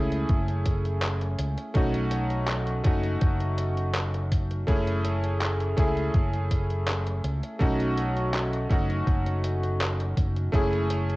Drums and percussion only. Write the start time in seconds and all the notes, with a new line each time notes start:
0.12 closed hi-hat
0.29 kick, closed hi-hat
0.48 closed hi-hat
0.66 kick, closed hi-hat
0.85 closed hi-hat
1.02 clap, closed hi-hat
1.21 closed hi-hat
1.39 closed hi-hat
1.58 closed hi-hat
1.75 kick, closed hi-hat
1.94 closed hi-hat
2.11 closed hi-hat
2.30 closed hi-hat
2.48 clap, closed hi-hat
2.67 closed hi-hat
2.84 kick, closed hi-hat
3.03 closed hi-hat
3.21 kick, closed hi-hat
3.40 closed hi-hat
3.58 closed hi-hat
3.77 closed hi-hat
3.94 clap, closed hi-hat
4.14 closed hi-hat
4.32 kick, closed hi-hat
4.51 closed hi-hat
4.68 kick, closed hi-hat
4.87 closed hi-hat
5.05 closed hi-hat
5.24 closed hi-hat
5.41 clap, closed hi-hat
5.60 closed hi-hat
5.78 kick, closed hi-hat
5.97 closed hi-hat
6.14 kick, closed hi-hat
6.33 closed hi-hat
6.51 kick, closed hi-hat
6.70 closed hi-hat
6.88 clap, closed hi-hat
7.07 closed hi-hat
7.24 closed hi-hat
7.43 closed hi-hat
7.61 kick, closed hi-hat
7.80 closed hi-hat
7.98 closed hi-hat
8.17 closed hi-hat
8.34 clap, closed hi-hat
8.53 closed hi-hat
8.71 kick, closed hi-hat
8.90 closed hi-hat
9.07 kick, closed hi-hat
9.26 closed hi-hat
9.44 closed hi-hat
9.63 closed hi-hat
9.81 clap, closed hi-hat
10.00 closed hi-hat
10.17 kick, closed hi-hat
10.36 closed hi-hat
10.54 kick, closed hi-hat
10.73 closed hi-hat
10.90 closed hi-hat
11.10 closed hi-hat